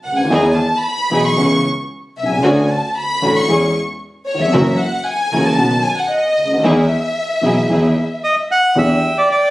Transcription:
0.04 D2 F#5
0.12 C#2
0.18 D2 G#5
0.25 D#2
0.30 E2 E3 B3 D#4 E4 G#4
0.54 A5
0.81 B5
1.10 B1 B2 E3 B3 D#4 E4 G#4
1.22 C#6
1.37 C#2 C#3 E3 B3 C#4 E4 G#4 B4
2.17 C2 E5
2.23 B1
2.29 C2 G#5
2.37 C#2
2.43 D2 D3 A3 C#4 D4 F#4
2.71 A5
2.98 B5
3.22 A1 A2 D3 A3 C#4 D4 F#4
3.36 C#6
3.48 E2 E3 G#3 C#4 E4 G#4
4.26 C#5
4.35 D#2
4.39 E2 E5
4.48 F2
4.52 F#1 F#2 E3 F#3 A#3 C#4 E4 F#4 A#4
4.79 F#5
5.06 G#5
5.32 C#2 C#3 E3 A#3 C#4 E4 F#4 A#4
5.45 A5
5.58 B1 B2 D#3 B3 C#4 D#4 F#4 B4
5.84 G#5
5.97 F#5
6.10 D#5
6.37 D2
6.45 C#2
6.53 D2
6.59 D#2 E5
6.64 E2 E3 B3 D#4 E4 G#4
7.41 B1 B2 E3 B3 D#4 E4 G#4
7.69 E2 E3 B3 D#4 E4 G#4
8.24 D#5
8.52 F#5
8.75 E2 E3 B3 D4 G4 E5 G5
9.18 D5
9.31 D5

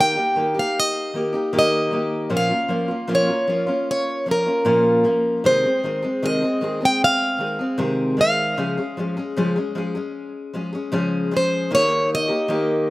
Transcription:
Already playing: D#3 A#3 D#4
0.00 G4 G5
0.16 A#3 D#4 G4
0.36 D#3 A#3 D#4 G4
0.54 A#3 D#4 G4
0.59 F5
0.79 D#5
1.14 D#3 A#3 D#4 G4
1.33 A#3 D#4 G4
1.53 D#3 A#3 D#4 G4
1.59 D#5
1.91 D#3 A#3 D#4 G4
2.30 A#2 F3 A#3 C#4 F4
2.37 F5
2.49 A#3 C#4 F4
2.68 F3 A#3 C#4 F4
2.88 A#3 C#4 F4
3.07 A#2 F3 A#3 C#4 F4
3.15 C#5
3.27 A#3 C#4 F4
3.47 F3 A#3 C#4 F4
3.67 A#3 C#4 F4
3.91 C#5
4.26 F3 A#3 C#4 F4
4.31 A#4
4.46 A#3 C#4 F4
4.65 A#2 F3 A#3 C#4 F4
5.04 F3 A#3 C#4 F4
5.44 C3 D#3 G#3 C4 G#4 C5
5.64 G#3 C4 G#4
5.84 D#3 G#3 C4 G#4
6.02 G#3 C4 G#4
6.22 C3 D#3 G#3 C4 G#4 D#5
6.42 G#3 C4 G#4
6.61 D#3 G#3 C4 G#4
6.81 G#3 C4 G#4
6.85 G5
7.04 F5
7.39 D#3 G#3 C4 G#4
7.59 G#3 C4 G#4
7.78 C3 D#3 G#3 C4 G#4
8.17 D#3 G#3 C4 G#4
8.21 F5
8.57 C#3 F3 G#3 C#4 G#4
8.77 G#3 C#4 G#4
8.97 F3 G#3 C#4 G#4
9.17 G#3 C#4 G#4
9.37 C#3 F3 G#3 C#4 G#4
9.56 G#3 C#4 G#4
9.75 F3 G#3 C#4 G#4
9.95 G#3 C#4 G#4
10.53 F3 G#3 C#4 G#4
10.73 G#3 C#4 G#4
10.92 C#3 F3 G#3 C#4 G#4
11.31 F3 G#3 C#4 G#4
11.37 C5
11.71 D#3 A#3 D#4 G4
11.75 C#5
12.15 D#5
12.28 A#3 D#4 G4
12.48 D#3 A#3 D#4 G4

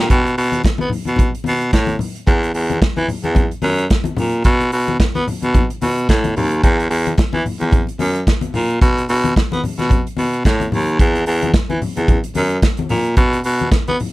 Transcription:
0.10 B2, kick, closed hi-hat, muted conga
0.25 closed hi-hat, muted conga
0.38 B2, open hi-hat
0.52 closed hi-hat, high conga
0.64 B3, kick, snare, closed hi-hat, muted conga
0.78 B3, closed hi-hat, high conga
0.90 open hi-hat, low conga
1.05 B2, closed hi-hat, high conga
1.16 kick, closed hi-hat, muted conga, low conga
1.35 closed hi-hat
1.44 B2, open hi-hat, high conga
1.61 closed hi-hat
1.71 A2, kick, snare, closed hi-hat, muted conga
1.87 closed hi-hat, muted conga, high conga
1.99 open hi-hat, low conga
2.15 closed hi-hat
2.27 E2, kick, closed hi-hat, muted conga
2.43 closed hi-hat
2.54 E2, open hi-hat
2.70 closed hi-hat, high conga
2.82 E3, kick, snare, closed hi-hat, muted conga
2.97 E3, closed hi-hat, high conga
3.08 open hi-hat, low conga
3.24 E2, closed hi-hat, high conga
3.35 kick, closed hi-hat, muted conga, low conga
3.51 closed hi-hat
3.62 F#2, open hi-hat, high conga
3.78 closed hi-hat
3.90 kick, snare, closed hi-hat
4.04 closed hi-hat, muted conga, high conga
4.17 A#2, open hi-hat, low conga
4.32 closed hi-hat
4.44 B2, kick, closed hi-hat
4.60 closed hi-hat, muted conga
4.72 B2, open hi-hat
4.87 closed hi-hat, high conga
5.00 B3, kick, snare, closed hi-hat
5.15 B3, closed hi-hat, muted conga, high conga
5.28 open hi-hat, low conga
5.42 B2, closed hi-hat, high conga
5.54 kick, closed hi-hat, muted conga, low conga
5.70 closed hi-hat, muted conga
5.81 B2, open hi-hat, high conga
5.97 closed hi-hat
6.09 A2, kick, snare, closed hi-hat
6.24 closed hi-hat, muted conga, high conga
6.36 D#2, open hi-hat, low conga
6.51 closed hi-hat
6.63 E2, kick, closed hi-hat
6.80 closed hi-hat
6.90 E2, open hi-hat
7.06 closed hi-hat, high conga
7.18 E3, kick, snare, closed hi-hat, muted conga
7.33 E3, closed hi-hat, muted conga, high conga
7.46 open hi-hat, low conga
7.60 E2, closed hi-hat, high conga
7.72 kick, closed hi-hat, muted conga, low conga
7.87 closed hi-hat, muted conga
7.99 F#2, open hi-hat, high conga
8.15 closed hi-hat
8.27 kick, snare, closed hi-hat
8.41 closed hi-hat, muted conga, high conga
8.54 A#2, open hi-hat, low conga
8.70 closed hi-hat
8.82 B2, kick, closed hi-hat
8.97 closed hi-hat, muted conga
9.09 B2, open hi-hat
9.24 closed hi-hat, high conga
9.36 B3, kick, snare, closed hi-hat, muted conga
9.52 B3, closed hi-hat, high conga
9.64 open hi-hat, low conga
9.79 B2, snare, closed hi-hat, high conga
9.90 kick, closed hi-hat, muted conga, low conga
10.07 closed hi-hat
10.17 B2, open hi-hat, high conga
10.33 closed hi-hat
10.44 A2, kick, snare, closed hi-hat, muted conga
10.60 closed hi-hat, high conga
10.72 D#2, open hi-hat, low conga
10.88 closed hi-hat
10.99 E2, kick, closed hi-hat, muted conga
11.15 closed hi-hat, muted conga
11.26 E2, open hi-hat
11.42 closed hi-hat, high conga
11.54 E3, kick, snare, closed hi-hat, muted conga
11.70 E3, closed hi-hat, high conga
11.82 open hi-hat, low conga
11.97 E2, closed hi-hat, high conga
12.08 kick, closed hi-hat, low conga
12.24 closed hi-hat, muted conga
12.35 F#2, open hi-hat, high conga
12.50 closed hi-hat
12.62 kick, snare, closed hi-hat, muted conga
12.77 closed hi-hat, high conga
12.89 A#2, open hi-hat, low conga
13.04 closed hi-hat
13.16 B2, kick, closed hi-hat, muted conga
13.33 closed hi-hat, muted conga
13.44 B2, open hi-hat
13.60 closed hi-hat, high conga
13.72 B3, kick, snare, closed hi-hat
13.87 B3, closed hi-hat, high conga
14.00 open hi-hat, low conga

